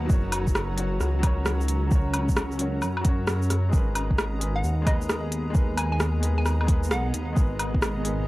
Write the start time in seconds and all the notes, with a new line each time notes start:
Already playing: B2 B3 D#4 F#4 D#5 F#5 A#5
0.05 F#3 F#4
0.10 F#1 C#4 A#4 C#5, kick, shaker
0.32 open hi-hat, low woodblock
0.47 A#5, kick, shaker
0.55 cross-stick, low woodblock, shaker
0.76 F#3 F#4 A#4 C#5, open hi-hat
1.00 C#2, cross-stick, shaker
1.19 F#3 F#4
1.23 A#4 C#5, kick, open hi-hat, low woodblock
1.46 cross-stick, shaker
1.61 shaker
1.68 open hi-hat, shaker
1.87 F#3 F#4
1.91 A#4, kick, shaker
1.95 C#5
2.14 open hi-hat, low woodblock
2.29 kick, shaker
2.37 cross-stick, low woodblock, shaker
2.52 shaker
2.58 F#3 F#4 A#4 C#5, open hi-hat
2.82 F#2, low woodblock, shaker
2.97 low woodblock
3.01 F#3 F#4, kick, open hi-hat
3.06 A#4 C#5
3.27 cross-stick, shaker
3.42 shaker
3.50 cross-stick, open hi-hat, shaker
3.69 G#3 B3 G#4
3.73 G#1 A#4 B4, kick, shaker
3.88 G#4
3.95 open hi-hat, low woodblock
4.11 kick
4.16 D#5, cross-stick, low woodblock, shaker
4.39 G#3 G#4 A#4, open hi-hat
4.43 B4
4.56 F#5
4.64 D#2, shaker
4.82 G#3 G#4
4.87 A#4 B4 D#5, kick, open hi-hat, low woodblock
5.02 shaker
5.09 cross-stick, shaker
5.32 open hi-hat
5.50 G#3 G#4
5.55 A#4 B4, kick, shaker
5.77 G#5, open hi-hat, low woodblock
5.92 G#5
6.00 cross-stick, shaker
6.21 G#3 G#4 A#4 B4, open hi-hat
6.38 G#5
6.46 cross-stick, low woodblock, shaker
6.61 G#3, low woodblock
6.67 G#4 A#4, kick, open hi-hat
6.72 B4
6.83 shaker
6.91 B1 F#5, cross-stick, shaker
7.14 D#2, open hi-hat
7.33 G#1 G#3 G#4, kick
7.37 A#4 B4, shaker
7.59 open hi-hat, low woodblock
7.74 kick
7.82 cross-stick, low woodblock, shaker
8.03 G#3 G#4 A#4 B4, open hi-hat